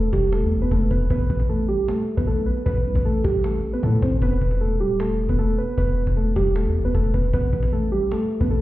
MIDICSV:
0, 0, Header, 1, 4, 480
1, 0, Start_track
1, 0, Tempo, 389610
1, 1358, Time_signature, 4, 2, 24, 8
1, 10612, End_track
2, 0, Start_track
2, 0, Title_t, "Synth keys"
2, 0, Program_c, 0, 88
2, 0, Note_on_c, 0, 57, 66
2, 0, Note_on_c, 0, 69, 78
2, 124, Note_off_c, 0, 69, 0
2, 129, Note_off_c, 0, 57, 0
2, 155, Note_on_c, 0, 67, 80
2, 165, Note_on_c, 0, 55, 61
2, 363, Note_off_c, 0, 67, 0
2, 368, Note_off_c, 0, 55, 0
2, 397, Note_on_c, 0, 69, 77
2, 408, Note_on_c, 0, 57, 63
2, 736, Note_off_c, 0, 69, 0
2, 742, Note_off_c, 0, 57, 0
2, 762, Note_on_c, 0, 71, 87
2, 771, Note_on_c, 0, 59, 65
2, 863, Note_off_c, 0, 71, 0
2, 869, Note_off_c, 0, 59, 0
2, 881, Note_on_c, 0, 69, 91
2, 892, Note_on_c, 0, 57, 74
2, 1086, Note_off_c, 0, 69, 0
2, 1093, Note_off_c, 0, 57, 0
2, 1117, Note_on_c, 0, 71, 73
2, 1127, Note_on_c, 0, 59, 53
2, 1324, Note_off_c, 0, 71, 0
2, 1330, Note_off_c, 0, 59, 0
2, 1363, Note_on_c, 0, 71, 111
2, 1372, Note_on_c, 0, 59, 84
2, 1812, Note_off_c, 0, 71, 0
2, 1817, Note_off_c, 0, 59, 0
2, 1839, Note_on_c, 0, 69, 82
2, 1849, Note_on_c, 0, 57, 60
2, 2045, Note_off_c, 0, 69, 0
2, 2051, Note_off_c, 0, 57, 0
2, 2075, Note_on_c, 0, 67, 85
2, 2085, Note_on_c, 0, 55, 61
2, 2282, Note_off_c, 0, 67, 0
2, 2288, Note_off_c, 0, 55, 0
2, 2320, Note_on_c, 0, 69, 88
2, 2331, Note_on_c, 0, 57, 73
2, 2657, Note_off_c, 0, 69, 0
2, 2663, Note_off_c, 0, 57, 0
2, 2675, Note_on_c, 0, 71, 78
2, 2684, Note_on_c, 0, 59, 60
2, 2780, Note_off_c, 0, 71, 0
2, 2785, Note_off_c, 0, 59, 0
2, 2799, Note_on_c, 0, 69, 86
2, 2809, Note_on_c, 0, 57, 65
2, 3005, Note_off_c, 0, 69, 0
2, 3011, Note_off_c, 0, 57, 0
2, 3032, Note_on_c, 0, 71, 77
2, 3042, Note_on_c, 0, 59, 62
2, 3241, Note_off_c, 0, 71, 0
2, 3246, Note_off_c, 0, 59, 0
2, 3274, Note_on_c, 0, 71, 109
2, 3285, Note_on_c, 0, 59, 75
2, 3727, Note_off_c, 0, 71, 0
2, 3733, Note_off_c, 0, 59, 0
2, 3761, Note_on_c, 0, 69, 89
2, 3771, Note_on_c, 0, 57, 71
2, 3966, Note_off_c, 0, 69, 0
2, 3972, Note_off_c, 0, 57, 0
2, 3994, Note_on_c, 0, 67, 90
2, 4004, Note_on_c, 0, 55, 62
2, 4202, Note_off_c, 0, 67, 0
2, 4208, Note_off_c, 0, 55, 0
2, 4239, Note_on_c, 0, 69, 80
2, 4250, Note_on_c, 0, 57, 61
2, 4577, Note_off_c, 0, 69, 0
2, 4583, Note_off_c, 0, 57, 0
2, 4600, Note_on_c, 0, 71, 88
2, 4609, Note_on_c, 0, 59, 64
2, 4702, Note_off_c, 0, 71, 0
2, 4707, Note_off_c, 0, 59, 0
2, 4718, Note_on_c, 0, 69, 87
2, 4729, Note_on_c, 0, 57, 65
2, 4925, Note_off_c, 0, 69, 0
2, 4931, Note_off_c, 0, 57, 0
2, 4956, Note_on_c, 0, 72, 65
2, 4966, Note_on_c, 0, 60, 54
2, 5163, Note_off_c, 0, 72, 0
2, 5169, Note_off_c, 0, 60, 0
2, 5204, Note_on_c, 0, 71, 108
2, 5213, Note_on_c, 0, 59, 86
2, 5652, Note_off_c, 0, 71, 0
2, 5657, Note_off_c, 0, 59, 0
2, 5678, Note_on_c, 0, 69, 80
2, 5688, Note_on_c, 0, 57, 58
2, 5884, Note_off_c, 0, 69, 0
2, 5890, Note_off_c, 0, 57, 0
2, 5917, Note_on_c, 0, 67, 81
2, 5927, Note_on_c, 0, 55, 67
2, 6124, Note_off_c, 0, 67, 0
2, 6129, Note_off_c, 0, 55, 0
2, 6158, Note_on_c, 0, 69, 87
2, 6168, Note_on_c, 0, 57, 69
2, 6496, Note_off_c, 0, 69, 0
2, 6501, Note_off_c, 0, 57, 0
2, 6522, Note_on_c, 0, 71, 83
2, 6532, Note_on_c, 0, 59, 59
2, 6623, Note_off_c, 0, 71, 0
2, 6629, Note_off_c, 0, 59, 0
2, 6637, Note_on_c, 0, 69, 89
2, 6646, Note_on_c, 0, 57, 67
2, 6844, Note_off_c, 0, 69, 0
2, 6849, Note_off_c, 0, 57, 0
2, 6877, Note_on_c, 0, 71, 82
2, 6888, Note_on_c, 0, 59, 64
2, 7084, Note_off_c, 0, 71, 0
2, 7090, Note_off_c, 0, 59, 0
2, 7119, Note_on_c, 0, 71, 99
2, 7130, Note_on_c, 0, 59, 81
2, 7570, Note_off_c, 0, 71, 0
2, 7575, Note_off_c, 0, 59, 0
2, 7598, Note_on_c, 0, 69, 77
2, 7608, Note_on_c, 0, 57, 67
2, 7804, Note_off_c, 0, 69, 0
2, 7810, Note_off_c, 0, 57, 0
2, 7834, Note_on_c, 0, 67, 80
2, 7845, Note_on_c, 0, 55, 60
2, 8042, Note_off_c, 0, 67, 0
2, 8049, Note_off_c, 0, 55, 0
2, 8076, Note_on_c, 0, 69, 76
2, 8085, Note_on_c, 0, 57, 63
2, 8415, Note_off_c, 0, 69, 0
2, 8420, Note_off_c, 0, 57, 0
2, 8437, Note_on_c, 0, 71, 85
2, 8447, Note_on_c, 0, 59, 68
2, 8540, Note_off_c, 0, 71, 0
2, 8546, Note_off_c, 0, 59, 0
2, 8558, Note_on_c, 0, 69, 89
2, 8567, Note_on_c, 0, 57, 71
2, 8764, Note_off_c, 0, 69, 0
2, 8770, Note_off_c, 0, 57, 0
2, 8797, Note_on_c, 0, 71, 74
2, 8805, Note_on_c, 0, 59, 54
2, 9004, Note_off_c, 0, 71, 0
2, 9009, Note_off_c, 0, 59, 0
2, 9041, Note_on_c, 0, 71, 107
2, 9051, Note_on_c, 0, 59, 86
2, 9491, Note_off_c, 0, 71, 0
2, 9496, Note_off_c, 0, 59, 0
2, 9519, Note_on_c, 0, 69, 79
2, 9529, Note_on_c, 0, 57, 59
2, 9725, Note_off_c, 0, 69, 0
2, 9731, Note_off_c, 0, 57, 0
2, 9755, Note_on_c, 0, 67, 87
2, 9765, Note_on_c, 0, 55, 62
2, 9963, Note_off_c, 0, 67, 0
2, 9968, Note_off_c, 0, 55, 0
2, 10001, Note_on_c, 0, 69, 87
2, 10011, Note_on_c, 0, 57, 75
2, 10338, Note_off_c, 0, 69, 0
2, 10343, Note_off_c, 0, 57, 0
2, 10354, Note_on_c, 0, 71, 76
2, 10365, Note_on_c, 0, 59, 62
2, 10459, Note_off_c, 0, 71, 0
2, 10465, Note_off_c, 0, 59, 0
2, 10478, Note_on_c, 0, 69, 84
2, 10488, Note_on_c, 0, 57, 64
2, 10612, Note_off_c, 0, 57, 0
2, 10612, Note_off_c, 0, 69, 0
2, 10612, End_track
3, 0, Start_track
3, 0, Title_t, "808-style bass"
3, 0, Program_c, 1, 38
3, 0, Note_on_c, 1, 28, 103
3, 144, Note_off_c, 1, 28, 0
3, 159, Note_on_c, 1, 28, 107
3, 518, Note_on_c, 1, 40, 95
3, 537, Note_off_c, 1, 28, 0
3, 698, Note_on_c, 1, 28, 98
3, 717, Note_off_c, 1, 40, 0
3, 869, Note_off_c, 1, 28, 0
3, 879, Note_on_c, 1, 28, 110
3, 1109, Note_off_c, 1, 28, 0
3, 1118, Note_on_c, 1, 28, 101
3, 1348, Note_off_c, 1, 28, 0
3, 1358, Note_on_c, 1, 33, 108
3, 1588, Note_off_c, 1, 33, 0
3, 1599, Note_on_c, 1, 33, 107
3, 2174, Note_off_c, 1, 33, 0
3, 2680, Note_on_c, 1, 33, 105
3, 2918, Note_on_c, 1, 35, 100
3, 2937, Note_off_c, 1, 33, 0
3, 3032, Note_off_c, 1, 35, 0
3, 3279, Note_on_c, 1, 33, 104
3, 3518, Note_on_c, 1, 36, 101
3, 3537, Note_off_c, 1, 33, 0
3, 3632, Note_off_c, 1, 36, 0
3, 3638, Note_on_c, 1, 33, 103
3, 3983, Note_off_c, 1, 33, 0
3, 3999, Note_on_c, 1, 33, 106
3, 4459, Note_off_c, 1, 33, 0
3, 4719, Note_on_c, 1, 45, 114
3, 4949, Note_off_c, 1, 45, 0
3, 4957, Note_on_c, 1, 33, 104
3, 5188, Note_off_c, 1, 33, 0
3, 5198, Note_on_c, 1, 28, 110
3, 5428, Note_off_c, 1, 28, 0
3, 5438, Note_on_c, 1, 28, 110
3, 5917, Note_on_c, 1, 26, 102
3, 5936, Note_off_c, 1, 28, 0
3, 6217, Note_on_c, 1, 28, 99
3, 6235, Note_off_c, 1, 26, 0
3, 6502, Note_off_c, 1, 28, 0
3, 6519, Note_on_c, 1, 28, 101
3, 6864, Note_off_c, 1, 28, 0
3, 7117, Note_on_c, 1, 28, 111
3, 7463, Note_off_c, 1, 28, 0
3, 7477, Note_on_c, 1, 28, 106
3, 7823, Note_off_c, 1, 28, 0
3, 7837, Note_on_c, 1, 28, 109
3, 8197, Note_on_c, 1, 40, 100
3, 8215, Note_off_c, 1, 28, 0
3, 8378, Note_on_c, 1, 28, 95
3, 8396, Note_off_c, 1, 40, 0
3, 8549, Note_off_c, 1, 28, 0
3, 8558, Note_on_c, 1, 28, 109
3, 8788, Note_off_c, 1, 28, 0
3, 8796, Note_on_c, 1, 28, 102
3, 9027, Note_off_c, 1, 28, 0
3, 9036, Note_on_c, 1, 33, 107
3, 9267, Note_off_c, 1, 33, 0
3, 9277, Note_on_c, 1, 33, 108
3, 9853, Note_off_c, 1, 33, 0
3, 10358, Note_on_c, 1, 33, 111
3, 10612, Note_off_c, 1, 33, 0
3, 10612, End_track
4, 0, Start_track
4, 0, Title_t, "Cajon"
4, 158, Note_on_c, 9, 38, 93
4, 159, Note_on_c, 9, 36, 106
4, 281, Note_off_c, 9, 38, 0
4, 282, Note_off_c, 9, 36, 0
4, 399, Note_on_c, 9, 38, 120
4, 522, Note_off_c, 9, 38, 0
4, 879, Note_on_c, 9, 36, 89
4, 1002, Note_off_c, 9, 36, 0
4, 1118, Note_on_c, 9, 36, 97
4, 1241, Note_off_c, 9, 36, 0
4, 1359, Note_on_c, 9, 36, 113
4, 1482, Note_off_c, 9, 36, 0
4, 1599, Note_on_c, 9, 36, 85
4, 1718, Note_off_c, 9, 36, 0
4, 1718, Note_on_c, 9, 36, 94
4, 1842, Note_off_c, 9, 36, 0
4, 1960, Note_on_c, 9, 38, 33
4, 2079, Note_off_c, 9, 38, 0
4, 2079, Note_on_c, 9, 38, 40
4, 2202, Note_off_c, 9, 38, 0
4, 2320, Note_on_c, 9, 38, 116
4, 2439, Note_off_c, 9, 38, 0
4, 2439, Note_on_c, 9, 38, 32
4, 2560, Note_off_c, 9, 38, 0
4, 2560, Note_on_c, 9, 38, 54
4, 2680, Note_on_c, 9, 36, 90
4, 2683, Note_off_c, 9, 38, 0
4, 2799, Note_on_c, 9, 38, 49
4, 2803, Note_off_c, 9, 36, 0
4, 2919, Note_off_c, 9, 38, 0
4, 2919, Note_on_c, 9, 38, 34
4, 3039, Note_off_c, 9, 38, 0
4, 3039, Note_on_c, 9, 38, 26
4, 3159, Note_off_c, 9, 38, 0
4, 3159, Note_on_c, 9, 38, 45
4, 3279, Note_on_c, 9, 36, 113
4, 3282, Note_off_c, 9, 38, 0
4, 3400, Note_on_c, 9, 38, 27
4, 3402, Note_off_c, 9, 36, 0
4, 3519, Note_off_c, 9, 38, 0
4, 3519, Note_on_c, 9, 38, 32
4, 3638, Note_on_c, 9, 36, 94
4, 3643, Note_off_c, 9, 38, 0
4, 3761, Note_off_c, 9, 36, 0
4, 3878, Note_on_c, 9, 38, 33
4, 3997, Note_off_c, 9, 38, 0
4, 3997, Note_on_c, 9, 38, 91
4, 3999, Note_on_c, 9, 36, 105
4, 4120, Note_off_c, 9, 38, 0
4, 4122, Note_off_c, 9, 36, 0
4, 4239, Note_on_c, 9, 38, 122
4, 4358, Note_off_c, 9, 38, 0
4, 4358, Note_on_c, 9, 38, 32
4, 4478, Note_off_c, 9, 38, 0
4, 4478, Note_on_c, 9, 38, 53
4, 4598, Note_off_c, 9, 38, 0
4, 4598, Note_on_c, 9, 38, 34
4, 4719, Note_on_c, 9, 36, 89
4, 4721, Note_off_c, 9, 38, 0
4, 4838, Note_on_c, 9, 38, 34
4, 4842, Note_off_c, 9, 36, 0
4, 4957, Note_on_c, 9, 36, 103
4, 4961, Note_off_c, 9, 38, 0
4, 5078, Note_on_c, 9, 38, 44
4, 5080, Note_off_c, 9, 36, 0
4, 5198, Note_on_c, 9, 36, 114
4, 5202, Note_off_c, 9, 38, 0
4, 5318, Note_on_c, 9, 38, 27
4, 5321, Note_off_c, 9, 36, 0
4, 5437, Note_on_c, 9, 36, 87
4, 5441, Note_off_c, 9, 38, 0
4, 5557, Note_off_c, 9, 36, 0
4, 5557, Note_on_c, 9, 36, 95
4, 5680, Note_off_c, 9, 36, 0
4, 5798, Note_on_c, 9, 38, 34
4, 5918, Note_off_c, 9, 38, 0
4, 5918, Note_on_c, 9, 38, 41
4, 6041, Note_off_c, 9, 38, 0
4, 6158, Note_on_c, 9, 38, 124
4, 6278, Note_off_c, 9, 38, 0
4, 6278, Note_on_c, 9, 38, 31
4, 6398, Note_off_c, 9, 38, 0
4, 6398, Note_on_c, 9, 38, 52
4, 6519, Note_on_c, 9, 36, 93
4, 6521, Note_off_c, 9, 38, 0
4, 6638, Note_on_c, 9, 38, 49
4, 6642, Note_off_c, 9, 36, 0
4, 6757, Note_off_c, 9, 38, 0
4, 6757, Note_on_c, 9, 38, 36
4, 6878, Note_off_c, 9, 38, 0
4, 6878, Note_on_c, 9, 38, 26
4, 6998, Note_off_c, 9, 38, 0
4, 6998, Note_on_c, 9, 38, 44
4, 7117, Note_on_c, 9, 36, 115
4, 7121, Note_off_c, 9, 38, 0
4, 7240, Note_off_c, 9, 36, 0
4, 7477, Note_on_c, 9, 36, 94
4, 7600, Note_off_c, 9, 36, 0
4, 7836, Note_on_c, 9, 38, 94
4, 7838, Note_on_c, 9, 36, 103
4, 7959, Note_off_c, 9, 38, 0
4, 7961, Note_off_c, 9, 36, 0
4, 8077, Note_on_c, 9, 38, 119
4, 8201, Note_off_c, 9, 38, 0
4, 8558, Note_on_c, 9, 36, 90
4, 8681, Note_off_c, 9, 36, 0
4, 8796, Note_on_c, 9, 36, 99
4, 8919, Note_off_c, 9, 36, 0
4, 9037, Note_on_c, 9, 36, 116
4, 9156, Note_on_c, 9, 38, 28
4, 9160, Note_off_c, 9, 36, 0
4, 9277, Note_on_c, 9, 36, 88
4, 9279, Note_off_c, 9, 38, 0
4, 9396, Note_off_c, 9, 36, 0
4, 9396, Note_on_c, 9, 36, 94
4, 9517, Note_on_c, 9, 38, 38
4, 9520, Note_off_c, 9, 36, 0
4, 9637, Note_off_c, 9, 38, 0
4, 9637, Note_on_c, 9, 38, 34
4, 9757, Note_off_c, 9, 38, 0
4, 9757, Note_on_c, 9, 38, 40
4, 9880, Note_off_c, 9, 38, 0
4, 9997, Note_on_c, 9, 38, 121
4, 10118, Note_off_c, 9, 38, 0
4, 10118, Note_on_c, 9, 38, 32
4, 10237, Note_off_c, 9, 38, 0
4, 10237, Note_on_c, 9, 38, 53
4, 10358, Note_on_c, 9, 36, 96
4, 10360, Note_off_c, 9, 38, 0
4, 10478, Note_on_c, 9, 38, 50
4, 10481, Note_off_c, 9, 36, 0
4, 10601, Note_off_c, 9, 38, 0
4, 10612, End_track
0, 0, End_of_file